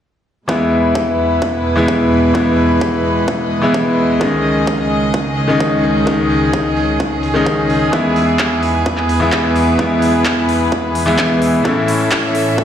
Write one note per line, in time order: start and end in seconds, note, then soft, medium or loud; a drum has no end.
0.48 4.17 E2 medium
0.48 4.17 B2 medium
0.48 1.73 E3 medium
0.48 1.74 G#3 medium
0.48 7.89 G#3 medium
0.48 1.74 B3 medium
0.48 2.33 E4 medium
0.48 1.75 E4 medium
0.48 4.17 B4 medium
0.48 kick loud
0.95 kick loud
1.19 open hi-hat medium
1.42 kick loud
1.65 open hi-hat loud
1.76 2.31 E3 medium
1.76 2.32 G#3 medium
1.76 2.32 B3 medium
1.76 2.33 E4 medium
1.88 kick loud
2.34 3.59 E3 medium
2.34 3.60 G#3 medium
2.34 3.60 B3 medium
2.34 3.61 E4 medium
2.34 7.89 D#5 medium
2.34 kick loud
2.58 open hi-hat loud
2.81 kick loud
3.05 open hi-hat medium
3.28 kick loud
3.51 open hi-hat loud
3.62 4.17 E3 medium
3.62 4.18 G#3 medium
3.62 4.18 B3 medium
3.62 4.19 E4 loud
3.74 kick loud
4.20 7.89 C#2 medium
4.20 7.89 C#3 medium
4.20 5.45 D#3 medium
4.20 5.46 G#3 medium
4.20 5.46 C#4 medium
4.20 5.47 D#4 medium
4.20 11.61 G#4 medium
4.20 kick loud
4.44 open hi-hat loud
4.67 kick loud
4.91 open hi-hat medium
5.14 kick loud
5.37 open hi-hat loud
5.48 6.04 D#3 medium
5.48 6.04 G#3 medium
5.48 6.04 C#4 medium
5.48 6.05 D#4 medium
5.60 kick loud
5.84 open hi-hat medium
6.06 7.31 D#3 medium
6.06 7.32 G#3 medium
6.06 7.32 C#4 medium
6.06 7.33 D#4 medium
6.06 kick loud
6.30 open hi-hat loud
6.53 kick loud
6.77 open hi-hat medium
7.00 kick loud
7.23 open hi-hat loud
7.34 7.90 D#3 medium
7.34 7.90 G#3 medium
7.34 7.90 C#4 medium
7.34 7.91 D#4 medium
7.46 kick loud
7.70 open hi-hat medium
7.92 11.61 E2 medium
7.92 9.18 E3 medium
7.92 12.64 E3 medium
7.92 9.18 G#3 medium
7.92 11.61 B3 medium
7.92 9.18 B3 medium
7.92 9.19 E4 medium
7.92 11.61 B4 medium
7.92 kick loud
8.16 open hi-hat loud
8.39 kick loud
8.39 clap loud
8.63 open hi-hat medium
8.86 kick loud
8.98 clap soft
9.09 open hi-hat medium
9.20 9.76 E3 medium
9.20 9.76 G#3 medium
9.20 9.76 B3 medium
9.20 9.77 E4 medium
9.32 kick loud
9.32 clap loud
9.56 open hi-hat medium
9.78 11.04 E3 medium
9.78 11.04 G#3 medium
9.78 11.04 B3 medium
9.78 11.05 E4 medium
9.78 kick loud
10.02 open hi-hat loud
10.26 kick loud
10.26 clap loud
10.49 open hi-hat medium
10.72 kick loud
10.95 open hi-hat medium
11.06 11.62 E3 medium
11.06 11.62 G#3 medium
11.06 11.62 B3 medium
11.06 11.63 E4 loud
11.06 clap soft
11.19 kick loud
11.19 clap loud
11.42 open hi-hat medium
11.64 12.64 A2 medium
11.64 12.64 E3 medium
11.64 12.64 A3 medium
11.64 12.64 C#4 medium
11.64 12.64 E4 medium
11.64 12.64 A4 medium
11.64 12.64 E5 medium
11.64 kick loud
11.88 open hi-hat medium
12.12 kick loud
12.12 clap loud
12.35 open hi-hat medium
12.58 kick loud